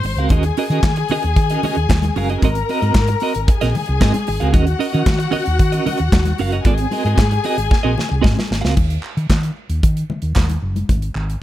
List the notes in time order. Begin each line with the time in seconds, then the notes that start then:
Already playing: C5 C6
0.03 G#1, muted clean electric guitar stroke, open hi-hat
0.16 C#2 C4 F#4 A#4 F5, closed hi-hat
0.29 D#2 C#4 F#4 G#4 A#4 D#5 G#5, kick, closed hi-hat, muted conga
0.43 closed hi-hat
0.57 C#4 F#4 A#4 D#5, open hi-hat
0.70 D#3 C#4 F#4 A#4 D#5, closed hi-hat
0.83 D#3, kick, snare, clap, high conga
0.96 muted clean electric guitar stroke, closed hi-hat
1.08 C#4 F#4 A#4 D#5, open hi-hat, low conga
1.23 D#2, muted clean electric guitar stroke, closed hi-hat
1.36 D#3, muted clean electric guitar stroke, kick, closed hi-hat
1.50 C#4 F#4 A#4 D#5, closed hi-hat
1.63 C#4 F#4 A#4 D#5, open hi-hat, muted conga, low conga
1.75 D#2, muted clean electric guitar stroke, closed hi-hat
1.89 D#2, muted clean electric guitar stroke, kick, snare, clap, high conga
2.02 muted clean electric guitar stroke, closed hi-hat, high conga
2.16 F#1 C#4 F#4 A#4 F5, open hi-hat
2.30 C#4 F#4 A#4 D#5, closed hi-hat
2.41 G#1 C4 F#4 A#4 D#5 A#5, kick, closed hi-hat, muted conga
2.55 muted clean electric guitar stroke, closed hi-hat
2.69 C4 F#4 A#4 D#5, open hi-hat
2.81 G#2 C4 F#4 A#4 D#5, closed hi-hat
2.95 G#2, kick, snare, clap, high conga
3.08 muted clean electric guitar stroke, closed hi-hat
3.20 C4 F#4 A#4 D#5, open hi-hat
3.34 G#1, muted clean electric guitar stroke, closed hi-hat
3.47 G#4 G#5, muted clean electric guitar stroke, kick, closed hi-hat
3.61 A#1 C4 F#4 A#4 D#5, snare, closed hi-hat
3.75 muted clean electric guitar stroke, open hi-hat, muted conga, low conga
3.86 C2, muted clean electric guitar stroke, closed hi-hat
4.01 G#2 C4 F#4 A#4 D#5, kick, snare, clap, high conga
4.14 muted clean electric guitar stroke, closed hi-hat, high conga
4.27 G#1, muted clean electric guitar stroke, open hi-hat
4.40 C#2 C4 F#4 A#4 F5, closed hi-hat
4.53 D#2 C#4 F#4 A#4 D#5 F#5, kick, closed hi-hat, muted conga
4.67 muted clean electric guitar stroke, closed hi-hat
4.79 C#4 F#4 A#4 D#5, open hi-hat
4.92 D#3 C#4 F#4 A#4 D#5, closed hi-hat
5.06 D#3, kick, snare, clap, high conga
5.19 muted clean electric guitar stroke, closed hi-hat
5.31 C#4 F#4 A#4 D#5, open hi-hat, low conga
5.45 D#2, muted clean electric guitar stroke, closed hi-hat
5.59 D#3, muted clean electric guitar stroke, kick, closed hi-hat
5.72 C#4 F#4 A#4 D#5, closed hi-hat
5.86 C#4 F#4 A#4 D#5, open hi-hat, muted conga, low conga
5.98 D#2, muted clean electric guitar stroke, closed hi-hat
6.12 D#2, muted clean electric guitar stroke, kick, snare, clap, high conga
6.25 muted clean electric guitar stroke, closed hi-hat, high conga
6.38 F#1 C#4 F#4 A#4 F5, open hi-hat
6.52 C#4 F#4 A#4 D#5, closed hi-hat
6.65 G#1 C4 F#4 G#4 A#4 D#5 G#5, kick, closed hi-hat, muted conga
6.78 muted clean electric guitar stroke, closed hi-hat
6.91 C4 F#4 A#4 D#5, open hi-hat, muted conga
7.05 G#2 C4 F#4 A#4 D#5, closed hi-hat
7.18 G#2, kick, snare, clap, high conga
7.31 muted clean electric guitar stroke, closed hi-hat
7.44 C4 F#4 A#4 D#5, open hi-hat
7.57 G#1, closed hi-hat
7.71 muted clean electric guitar stroke, kick, snare
7.83 A#1 C4 F#4 A#4 D#5
7.97 muted clean electric guitar stroke, snare, muted conga, low conga
8.09 C2, muted clean electric guitar stroke
8.22 G#2 C4 F#4 A#4 D#5, kick, snare, high conga
8.35 muted clean electric guitar stroke, high conga
8.39 snare
8.48 G#1, muted clean electric guitar stroke, snare
8.61 C#2 C4 F#4 A#4 F5, snare
8.77 D#2, kick, crash, muted conga
8.90 closed hi-hat
9.03 clap
9.17 D#3, closed hi-hat
9.30 D#3, kick, snare, clap, high conga
9.43 closed hi-hat
9.69 D#2, closed hi-hat
9.83 D#3, kick, closed hi-hat
9.97 closed hi-hat
10.10 muted conga, low conga
10.22 D#2, closed hi-hat
10.36 D#2, kick, snare, clap, high conga
10.37 clap
10.49 closed hi-hat, high conga
10.62 F#1
10.76 closed hi-hat, high conga
10.89 G#1, kick, closed hi-hat, muted conga
11.02 closed hi-hat
11.15 G#1, clap
11.30 closed hi-hat